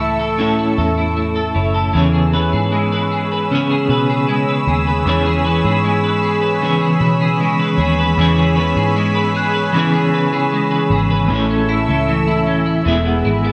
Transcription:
Already playing: C#2 A2 E3 A3 E4 A4 C#5 E5 C#6 E6 A6
0.00 E4
0.19 A4
0.38 A2 A3 C#4 E4 A4 C#5
0.59 E4
0.78 E2 A4
0.98 E4
1.17 A3
1.36 A4
1.55 F#1 E4 A4 C#5
1.60 E4
1.75 A4
1.93 E2 C#3 E3 B3 C#4 G#4 C#5 B5
2.13 G#4
2.33 B3 G#4 B4 C#5
2.38 C#4
2.53 G#2 G#4
2.72 G#3
2.92 B4
3.11 G#4
3.32 B4
3.50 C#3 B3 C#4
3.54 G#4 C#5
3.71 G#4
3.89 B2 B4
4.10 G#4
4.28 G#3
4.49 B4
4.67 D#2 G#4
4.87 B4
5.05 E2 C#3 E3 B3 C#4 G#4 C#5
5.26 G#4
5.44 B3 G#4 B4 C#5
5.49 C#4
5.64 G#2 G#4
5.84 G#3
6.04 B4
6.23 G#4
6.42 B4
6.62 C#3 E3 B3 C#4 G#4 C#5
6.81 G#4
7.01 B2 B4
7.21 G#4
7.40 G#3
7.59 B4
7.78 D#2 B3 G#4 C#5
7.83 C#4
7.99 B4
8.17 E2 C#3 E3 B3 C#4 G#4 C#5
8.38 G#4
8.56 B3 G#4 B4 C#5
8.61 C#4
8.76 G#2 G#4
8.96 G#3
9.15 B4
9.35 G#4 F#6
9.54 B4
9.72 C#3 E3 C#4
9.76 B3 G#4 C#5
9.94 G#4
10.13 B2 B4
10.33 G#4
10.52 G#3
10.71 B4
10.90 G#1 G#4
11.11 B4
11.28 A1 A2 A3 C#4 A4 E5 C#6 E6
11.32 E4 A4 C#5
11.50 C#4
11.69 E4 B6
11.89 C#2 C#4
12.08 E3
12.27 E4
12.47 C#4
12.66 E4
12.85 E1 E3 G#3 B3 E4 G#4 E5 B5 E6
13.05 B3
13.25 G#1 E4
13.44 B3

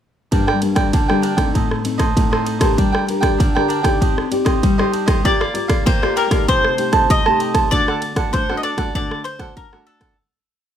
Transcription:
0.31 G2 G3 A#3 D4 A#4 D5 G5, kick, ride
0.47 A#4 D5 G5, cross-stick
0.61 G3 A#3 D4, muted cavaquinho stroke, ride
0.75 A#4 D5 G5, kick, cross-stick, ride
0.92 D3 D4 A#4 D5 G5, kick, ride
1.08 G3 A#3 D4 A#4 D5 G5, cross-stick
1.22 D4 A#4 D5 G5, ride
1.37 A3 C4 D#4 A#4 D5 G5, kick, cross-stick, ride
1.54 A2 D#4 A4 C5 D#5, kick, ride
1.71 cross-stick
1.84 A3 C4 D#4, muted cavaquinho stroke, ride
1.98 A4 C5 D#5, kick, cross-stick, ride
2.16 A2 A3 C4 D#4, kick, ride
2.31 A4 C5 D#5, cross-stick
2.45 D#4 A4 C5 D#5, ride
2.59 D4 G4 A4 A#4 C5 D#5, kick, cross-stick, ride
2.77 G3 D4 A#4 D5 G5, kick, ride
2.92 A#4 D5 G5, cross-stick
3.06 D4 G4 A#4, muted cavaquinho stroke, ride
3.21 A#4 D5 G5, kick, cross-stick, ride
3.38 D3 D4 A#4 D5 G5, kick, ride
3.55 D4 G4 A#4 D5 G5, cross-stick
3.68 D4 A#4 D5 G5, ride
3.83 D#4 G4 A#4 D5 G5, kick, cross-stick, ride
4.01 C4 D4 G4 C5 D#5, kick, ride
4.18 cross-stick
4.31 D#4 G4 D5, muted cavaquinho stroke, ride
4.45 G4 C5 D#5, kick, cross-stick, ride
4.63 G3, kick, ride
4.78 D#4 G4 C5 D5 D#5, cross-stick
4.92 D4 G4 C5 D#5, ride
5.06 G4 C5 D#5, kick, cross-stick, ride
5.24 A#3 F4 G4 A#4 D5 F5, kick, ride
5.40 A#4 D5 F5, cross-stick
5.54 F4 G4 D5, muted cavaquinho stroke, ride
5.68 A#4 D5 F5, kick, cross-stick, ride
5.85 A#3 G4 A#4 C5 D5 F5, kick, ride
6.02 F4 G4 A#4 D5 F5, cross-stick
6.16 G4 A#4 D5 F5, ride
6.30 A3 D#4 G4 A#4 D5 F5, kick, cross-stick, ride
6.48 C3 G4 C5 D#5 A5, kick, ride
6.64 cross-stick
6.78 A3 D#4 G4, muted cavaquinho stroke, ride
6.92 C5 D#5 A5, kick, cross-stick, ride
7.10 C3 D#5, kick, ride
7.26 A3 D#4 G4 C5 D#5 A5, cross-stick
7.39 G4 C5 D#5 A5, ride
7.54 C5 D#5 A5, kick, cross-stick, ride
7.71 D3 A3 D4 F#4 A4 D5 F#5, kick, ride
7.88 A4 D5 F#5, cross-stick
8.02 muted cavaquinho stroke, ride
8.16 A3 D4 F#4 A4 D5 F#5, kick, cross-stick, ride
8.33 A3 D4 A4 C5 D5 F#5, kick, ride
8.49 A3 D4 F#4 A4 D5 F#5, cross-stick
8.57 D#5
8.63 D4 A4 D5 F#5, ride
8.78 A3 D4 F#4 A4 D5 F#5, kick, cross-stick, ride
8.95 D3 A3 D4 F#4 A4 D5 F#5, kick, ride
9.11 cross-stick
9.24 C5, ride
9.39 A3 D4 F#4 A4 D5 F#5, kick, cross-stick, ride
9.57 A#4, kick, ride
9.72 A3 D4 F#4 A4 D5 F#5, cross-stick
9.86 D4 A4 D5 F#5, ride
10.01 A4 D5 F#5, kick, cross-stick, ride

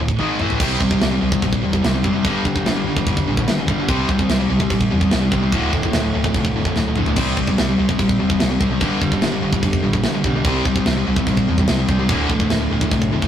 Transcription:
0.00 D1 D2 A2
0.08 kick
0.19 G#1 G#2 D#3 G#3, high tom
0.39 A1 A2 E3 A3, mid tom
0.50 floor tom
0.60 C2 C3 G3 C4, kick, crash
0.80 C2 C3 G3, kick
0.91 C3 G3, kick
1.01 C2 C3 G3, snare, crash
1.12 C3 G3
1.21 C2 C3 G3
1.32 C3 G3, kick
1.42 A#1 C3 G3, kick, crash
1.53 kick
1.63 E1 C3 G3
1.73 C3 G3, kick
1.83 C2 C3 G3, snare, crash
1.94 C3 G3
2.04 F#1 C3 G3 C4, kick
2.16 C3 G3
2.25 G1 G2 D3 G3, kick, crash
2.45 G1 G2 D3, kick
2.56 G2 D3, kick
2.66 G1 G2 D3, snare, crash
2.77 G2 D3
2.86 G1 G2 D3
2.97 G2 D3, kick
3.07 F1 G2 D3, kick, crash
3.17 kick
3.27 A#1 G2 D3
3.37 G2 D3, kick
3.48 G1 G2 D3, snare, crash
3.59 G2 D3
3.67 G1 G2 D3 G3, kick
3.80 G2 D3
3.88 C2 C3 G3 C4, kick, crash
4.09 C2 C3 G3, kick
4.19 C3 G3, kick
4.29 C2 C3 G3, snare, crash
4.40 C3 G3
4.50 C2 C3 G3
4.60 C3 G3, kick
4.70 A#1 C3 G3, kick, crash
4.81 kick
4.91 E2 C3 G3
5.01 C3 G3, kick
5.11 C2 C3 G3, snare, crash
5.22 C3 G3
5.31 C2 C3 G3 C4, kick
5.43 C3 G3
5.52 D1 D2 A2 D3, kick, crash
5.73 D1 D2 A2, kick
5.83 D2 A2, kick
5.93 D1 D2 A2, snare, crash
6.04 D2 A2
6.14 D1 D2 A2
6.24 D2 A2, kick
6.34 C2 D2 A2, kick, crash
6.45 kick
6.56 F1 D2 A2
6.65 D2 A2, kick
6.76 D1 D2 A2, snare
6.87 D2 A2
6.96 D1 D2 A2 D3, mid tom
7.06 D2 A2, floor tom
7.16 C2 C3 G3 C4, kick, crash
7.37 C2 C3 G3, kick
7.47 C3 G3, kick
7.58 C2 C3 G3, snare, crash
7.68 C3 G3
7.78 C2 C3 G3
7.89 C3 G3, kick
7.98 A#1 C3 G3, kick, crash
8.09 kick
8.19 E1 C3 G3
8.29 C3 G3, kick
8.40 C2 C3 G3, snare, crash
8.50 C3 G3
8.60 C2 C3 G3 C4, kick
8.70 C3 G3
8.80 G1 G2 D3 G3, kick, crash
9.02 G1 G2 D3, kick
9.12 G2 D3, kick
9.22 G1 G2 D3, snare, crash
9.33 G2 D3
9.42 G1 G2 D3
9.52 G2 D3, kick
9.62 F1 G2 D3, kick, crash
9.73 kick
9.83 A#1 G2 D3
9.93 G2 D3, kick
10.03 G1 G2 D3, snare, crash
10.14 G2 D3
10.24 B1 G2 D3 G3, kick
10.35 G2 D3
10.44 C2 C3 G3 C4, kick, crash
10.65 C2 C3 G3, kick
10.76 C3 G3, kick
10.86 C2 C3 G3, snare, crash
10.97 C3 G3
11.07 C2 C3 G3
11.16 C3 G3, kick
11.27 A#1 C3 G3, kick, crash
11.37 kick
11.48 E2 C3 G3
11.58 C3 G3, kick
11.67 C2 C3 G3, snare, crash
11.79 C3 G3
11.88 C2 C3 G3 C4, kick
11.99 C3 G3
12.09 D1 D2 A2 D3, kick, crash
12.30 D1 D2 A2, kick
12.40 D2 A2, kick
12.50 D1 D2 A2, snare, crash
12.60 D2 A2
12.71 D1 D2 A2
12.81 D2 A2, kick
12.91 C2 D2 A2, kick, crash
13.02 kick
13.12 F1 D2 A2
13.22 D2 A2, kick

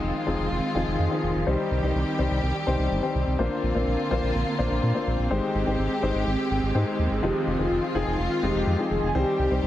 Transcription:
Already playing: D#3 F3 G#3 C4 D#4 F4 G#4
0.03 F1
0.26 F1 F3 C4 D#4 G#4
0.39 F1
0.51 F1
0.75 F1 F3 C4 D#4 G#4
0.87 F1
0.99 F2
1.11 F3 C4 D#4 G#4
1.23 F1
1.35 F1
1.47 C2 G3 C4 D#4 G4 C5
1.71 C2
1.83 C2 G3 C4 D#4 C5
1.95 C2
2.19 C2 G3 C4 D#4 C5
2.31 C2
2.43 C2
2.67 C2 G3 C4 D#4 C5
2.79 C2
2.91 G1
3.03 G3 C4 D#4 C5
3.15 C2
3.27 C2
3.39 A#1 D3 A#3 D4 F4 C5
3.63 A#1
3.75 A#1 A#3 D4 F4 C5
3.87 A#1
4.11 A#1 A#3 D4 F4 C5
4.23 A#1
4.35 A#1
4.59 A#1 A#3 D4 F4 C5
4.71 A#1
4.83 A#2
4.95 A#3 D4 F4 C5
5.07 A#1
5.19 A#1
5.31 G#1 D#3 G#3 D#4 G4 C5
5.55 G#1
5.67 G#1 G#3 D#4 G4 C5
5.79 G#1
6.03 G#1 G#3 D#4 G4 C5
6.15 G#1
6.27 G#1
6.51 G#1
6.63 G#1
6.75 G#2 G#3 D#4 G4 C5
6.99 D#2
7.11 G#1
7.23 F1 F3 G#3 C4 D#4 F4 G4
7.47 F1
7.59 F1 F3 C4 D#4 F4 G#4
7.71 F1
7.95 F1 F3 C4 D#4 G#4
8.07 F1 G#4
8.19 F1 F4
8.43 F1 F3 G#3 C4 D#4 G4
8.55 F1
8.66 F2
8.79 F3 C4 D#4 G#4
8.91 F1 G#4
9.03 F1
9.15 C2 G3 C4 D#4 G4 C5
9.39 C2
9.51 C2 G3 C4 D#4 C5
9.63 C2 G4

